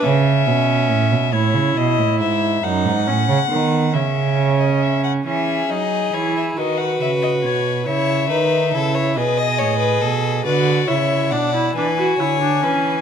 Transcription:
<<
  \new Staff \with { instrumentName = "Violin" } { \time 6/8 \key cis \phrygian \tempo 4. = 46 e''4. cis''8 dis''8 e''8 | fis''4. e''8. dis''16 e''16 fis''16 | e''8 dis''8 cis''16 e''16 dis''16 fis''16 e''16 dis''16 cis''8 | e''4. dis''4. |
\key b \dorian d''8 e''8 fis''8 gis''4. | }
  \new Staff \with { instrumentName = "Violin" } { \time 6/8 \key cis \phrygian r2. | r2. | gis'4. b'4. | cis''8 b'8 a'16 cis''16 b'16 dis''16 cis''16 b'16 a'8 |
\key b \dorian b'8 cis''8 d''8 b'8 cis''8 b'8 | }
  \new Staff \with { instrumentName = "Viola" } { \time 6/8 \key cis \phrygian cis'4. e'4. | dis'8 cis'8 b8 cis'4. | cis'8 dis'8 e'8 fis'4. | e'8 dis'8 e'8 gis'4. |
\key b \dorian fis'8 e'8 d'16 e'16 d'16 fis'16 e'16 d'16 cis'8 | }
  \new Staff \with { instrumentName = "Cello" } { \clef bass \time 6/8 \key cis \phrygian cis8 b,8 a,16 b,16 a,16 cis16 b,16 a,16 gis,8 | fis,16 gis,16 a,16 cis16 dis8 cis4. | e8 fis8 e8 dis8 cis8 b,8 | cis8 dis8 cis8 b,8 a,8 b,8 |
\key b \dorian d8 cis8 b,8 e8 d8 e8 | }
>>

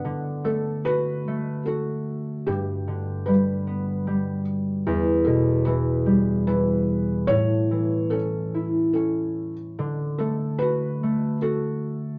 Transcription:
<<
  \new Staff \with { instrumentName = "Felt piano" } { \time 3/4 \key d \major \tempo 4 = 74 r8 a'8 b'4 a'4 | g'4 b'4. r8 | r8 a'8 b'4 b'4 | cis''4 a'4 a'8. r16 |
r8 a'8 b'4 a'4 | }
  \new Staff \with { instrumentName = "Harp" } { \clef bass \time 3/4 \key d \major d8 a8 fis'8 a8 fis'4 | g,8 d8 g8 b8 g4 | e,8 b,8 e8 g8 e4 | a,8 e8 cis'8 e'8 cis'4 |
d8 a8 fis'8 a8 fis'4 | }
>>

